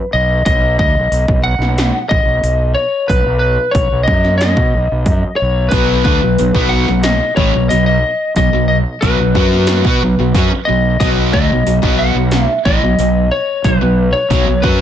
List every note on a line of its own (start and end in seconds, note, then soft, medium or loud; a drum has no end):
0.00 0.13 B4 medium
0.13 0.44 B1 medium
0.13 0.44 D#5 medium
0.45 0.77 B1 medium
0.45 0.78 D#5 medium
0.45 kick loud
0.45 open hi-hat soft
0.79 0.94 D2 medium
0.79 1.41 D#5 medium
0.79 kick loud
0.95 1.10 B1 medium
1.11 1.27 B1 medium
1.11 open hi-hat soft
1.28 1.58 B1 medium
1.28 kick loud
1.44 2.06 F#5 loud
1.58 1.90 B1 medium
1.58 snare soft
1.78 snare loud
1.78 open hi-hat soft
2.09 2.24 A1 medium
2.09 2.74 D#5 loud
2.09 kick loud
2.25 2.41 B1 medium
2.43 2.74 B1 medium
2.43 open hi-hat soft
2.74 3.06 C#5 medium
3.08 3.25 B1 medium
3.08 3.38 B4 medium
3.08 kick medium
3.08 open hi-hat soft
3.26 3.56 B1 medium
3.39 3.74 B4 medium
3.71 3.90 B1 medium
3.71 4.03 C#5 medium
3.71 kick loud
3.71 open hi-hat soft
3.92 4.07 B1 medium
4.03 4.36 D#5 medium
4.08 4.54 F#2 medium
4.08 kick loud
4.24 snare soft
4.38 5.36 D#5 medium
4.38 snare loud
4.38 open hi-hat soft
4.57 4.72 B2 medium
4.57 kick loud
4.75 4.89 B1 medium
4.91 5.06 B1 medium
5.06 5.22 F#2 medium
5.06 kick loud
5.06 open hi-hat soft
5.23 muted fingered electric bass stroke soft
5.36 5.72 C#5 medium
5.42 5.71 B1 medium
5.69 6.03 B1 medium
5.69 6.04 B2 medium
5.69 6.01 B4 medium
5.69 kick loud
5.69 open hi-hat soft
5.73 6.05 F#3 medium
5.73 6.05 B3 medium
6.04 6.21 D2 medium
6.04 6.21 D3 medium
6.04 6.21 A3 medium
6.04 6.73 B4 medium
6.04 kick loud
6.23 6.38 B1 medium
6.23 6.38 B2 medium
6.23 6.39 F#3 medium
6.38 6.54 B1 medium
6.38 6.53 B2 medium
6.38 6.54 F#3 medium
6.38 open hi-hat soft
6.54 6.86 B1 medium
6.54 6.87 B2 medium
6.54 6.87 F#3 medium
6.54 6.88 B3 loud
6.54 kick loud
6.69 7.04 F#5 medium
6.88 7.19 B1 medium
6.88 7.14 B2 medium
6.88 7.15 F#3 medium
6.88 snare soft
7.03 7.36 D#5 medium
7.03 snare loud
7.03 open hi-hat soft
7.36 7.52 A1 medium
7.36 7.53 A2 medium
7.36 7.53 E3 medium
7.36 7.69 C#5 medium
7.36 kick medium
7.53 7.70 B1 medium
7.53 7.69 B2 medium
7.53 7.70 F#3 medium
7.69 8.02 B1 medium
7.69 7.97 B2 medium
7.69 7.97 F#3 medium
7.69 7.85 D#5 medium
7.69 open hi-hat soft
7.86 8.33 D#5 medium
8.36 8.52 B1 medium
8.36 8.52 B2 medium
8.36 8.52 F#3 medium
8.36 8.67 D#5 medium
8.36 kick medium
8.36 open hi-hat medium
8.53 8.84 B1 medium
8.53 8.79 B2 medium
8.53 8.80 F#3 medium
8.68 8.77 D#5 medium
9.01 9.18 B1 medium
9.01 9.18 B2 medium
9.01 9.19 F#3 loud
9.01 10.72 B4 medium
9.01 kick loud
9.01 open hi-hat soft
9.19 9.35 B1 medium
9.19 9.34 B2 medium
9.19 9.34 F#3 medium
9.35 9.82 F#2 medium
9.35 9.84 F#3 medium
9.35 9.84 C#4 medium
9.35 9.85 F#4 medium
9.35 kick medium
9.52 snare soft
9.67 snare loud
9.67 open hi-hat soft
9.85 10.01 B2 medium
9.85 10.01 B3 medium
9.85 10.01 F#4 loud
9.85 kick loud
10.02 10.18 B1 medium
10.02 10.18 B2 medium
10.02 10.19 F#3 medium
10.19 10.34 B1 medium
10.19 10.34 B2 medium
10.19 10.34 F#3 medium
10.35 10.50 F#2 medium
10.35 10.50 F#3 medium
10.35 10.51 C#4 medium
10.35 kick loud
10.35 open hi-hat medium
10.52 muted overdriven electric guitar stroke medium
10.52 muted distorted electric guitar stroke medium
10.52 muted fingered electric bass stroke soft
10.65 10.94 B2 medium
10.65 10.95 F#3 medium
10.65 10.99 D#5 medium
10.69 10.99 B1 medium
11.00 11.31 B1 medium
11.00 11.32 B2 medium
11.00 11.32 F#3 loud
11.00 11.33 B3 loud
11.00 11.09 D#5 medium
11.00 kick loud
11.00 open hi-hat medium
11.33 11.49 D2 medium
11.33 11.49 D3 medium
11.33 11.49 A3 loud
11.33 11.96 D#5 medium
11.33 kick loud
11.50 11.66 B1 medium
11.50 11.65 B2 medium
11.50 11.66 F#3 medium
11.67 11.82 B1 medium
11.67 11.81 B2 medium
11.67 11.81 F#3 medium
11.67 open hi-hat medium
11.82 12.14 B1 medium
11.82 12.15 B2 medium
11.82 12.15 F#3 medium
11.82 12.15 B3 loud
11.82 kick medium
11.99 12.46 F#5 medium
12.15 12.46 B1 medium
12.15 12.43 B2 medium
12.15 12.43 F#3 medium
12.31 snare loud
12.31 open hi-hat soft
12.46 12.61 E5 medium
12.65 12.81 A1 medium
12.65 12.81 A2 medium
12.65 12.82 E3 medium
12.65 13.31 D#5 medium
12.65 kick medium
12.82 12.98 B1 medium
12.82 12.99 B2 medium
12.82 12.99 F#3 medium
12.98 13.29 B1 medium
12.98 13.26 B2 medium
12.98 13.26 F#3 medium
12.98 open hi-hat soft
13.31 13.66 C#5 medium
13.64 13.80 B1 medium
13.64 13.80 B2 medium
13.64 13.80 F#3 medium
13.64 14.16 B4 medium
13.64 kick medium
13.64 open hi-hat soft
13.81 14.12 B1 medium
13.81 14.08 B2 medium
13.81 14.08 F#3 medium
14.13 14.64 C#5 medium
14.30 14.46 B1 loud
14.30 14.46 B2 medium
14.30 14.46 F#3 medium
14.30 kick loud
14.30 open hi-hat soft
14.47 14.62 B1 medium
14.47 14.62 B2 medium
14.47 14.61 F#3 medium
14.62 14.81 F#2 medium
14.62 14.81 F#3 medium
14.62 14.81 C#4 medium
14.62 14.81 F#4 medium
14.62 14.81 B4 medium
14.62 kick loud